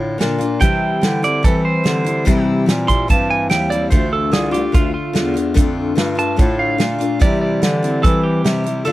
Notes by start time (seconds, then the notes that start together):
Already playing: A2 D3 D4 F4
0.18 A#2 D3 A#3 D4 F4, snare, closed hi-hat
0.38 A#3 D4 F4, closed hi-hat
0.60 C3 E3 G3 C4 E4 G5, kick, closed hi-hat
1.01 D3 E3 G3 C4 E4, snare, closed hi-hat
1.22 G3 C4 E4 D5, closed hi-hat
1.43 E3 G3 C4 E4 A4, kick, closed hi-hat
1.65 C5
1.84 D3 E3 G3 C4 E4, snare, closed hi-hat
2.05 G3 C4 E4, closed hi-hat
2.25 C3 E3 G3 C4 E4, kick, closed hi-hat
2.66 A#2 E3 G3 C4 E4, snare, closed hi-hat
2.87 G3 C4 E4 C6, kick, closed hi-hat
3.08 G2 E3 G3 C4 E4 A5, kick, closed hi-hat
3.30 G#5
3.50 D#2 E3 G3 C4 E4 G5, snare, closed hi-hat
3.70 G3 C4 E4 D5, closed hi-hat
3.90 D2 D3 A3 D4 F4 C5, kick, closed hi-hat
4.13 A4
4.31 C2 D3 A3 D4 F4 G#4, snare, closed hi-hat
4.51 A3 D4 F4 G4, closed hi-hat
4.72 D2 D3 A3 D4 F4, kick, closed hi-hat
4.94 F4
5.13 E2 D3 A3 D4 F4, snare, closed hi-hat
5.34 A3 D4 F4, closed hi-hat
5.54 F2 D3 A3 D4 F4, kick, closed hi-hat
5.95 G2 D3 A3 D4 F4, snare, closed hi-hat
6.15 A3 D4 F4 A5, closed hi-hat
6.36 A2 D3 A3 D4 F4, kick, closed hi-hat
6.59 F5
6.78 A#2 D3 A3 D4 F4, snare, closed hi-hat
6.98 A3 D4 F4, closed hi-hat
7.20 C3 E3 G3 C4 E4 D5, kick, closed hi-hat
7.41 D5
7.62 D3 E3 G3 C4 E4, snare, closed hi-hat
7.83 G3 C4 E4, closed hi-hat
8.03 E3 G3 C4 E4 A4, kick, closed hi-hat
8.23 G4
8.44 C3 E3 G3 C4 E4, snare, closed hi-hat
8.64 G3 C4 E4, closed hi-hat
8.85 D3 A3 D4 F4 A4